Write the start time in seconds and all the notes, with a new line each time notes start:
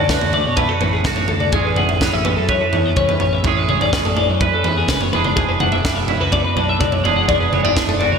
Already playing: D3 A3 C#4
0.00 D2
0.09 F#4 B4, kick, snare
0.21 D2 A4, floor tom
0.33 A3 D5, floor tom
0.46 B2 C#5
0.57 E4 B4, kick, floor tom
0.69 F#4 A4
0.81 A1 A2 B4, floor tom
0.93 G#4
1.04 A1 F#4 A4, kick, snare, mid tom
1.16 C#5, floor tom
1.28 D2 A4, floor tom
1.40 D5, mid tom
1.52 A1 A2 G#3 C#4 G#4, kick, floor tom
1.65 B4
1.76 G#4 F#5, floor tom, mid tom
1.89 A1 E5, floor tom
2.01 B3 C#5, kick, snare
2.14 A1 C#4 E5
2.24 E3 B4, floor tom
2.37 F#2 A4
2.49 B4 C#5, kick, floor tom
2.61 A4
2.72 E2 C#5, floor tom
2.86 D5
2.96 E2 C#4 C#5, kick, mid tom
3.08 B4, floor tom
3.20 A1 C#5, floor tom
3.33 E5
3.44 A1 A2 G#3 C#4 G#4 C#5, kick, floor tom
3.57 B4
3.69 G#4 C#5, mid tom
3.81 A1 D5, floor tom
3.93 C#4 B4, kick, snare
4.05 A1 A4, floor tom
4.16 E3 D5, floor tom
4.29 F#2 C#5
4.41 B4, kick, floor tom
4.54 A4
4.64 E2 G#2 B4, floor tom
4.77 G#4
4.88 F#1 F#2 B4, kick, snare, mid tom
5.01 C#5, floor tom
5.13 E1 E2 G#3 D4 G#4 B4, floor tom
5.24 D5, mid tom
5.36 E1 G#4, kick, floor tom
5.49 B4
5.60 D4 F#5, floor tom, mid tom
5.72 E1 E5, floor tom
5.84 E3 D5, kick, snare
5.96 E1 E5
6.08 E4 C#5, floor tom
6.20 C#2 F#4 B4
6.32 B2 D5, kick, floor tom
6.44 B4
6.56 B1 D4 D5, floor tom
6.69 E5
6.80 B1 D5, kick, mid tom
6.92 C#5, floor tom
7.04 E1 E2 G#3 D4 G#4 D5, floor tom
7.17 F#5
7.28 E1 G#4 D5, kick, floor tom
7.41 B4
7.52 B3 C#5, mid tom
7.64 E1 D4 D5, floor tom
7.76 E3 B4, kick, snare
7.88 E1 A4, floor tom
8.00 F#4 D5, floor tom
8.12 C#2 C#5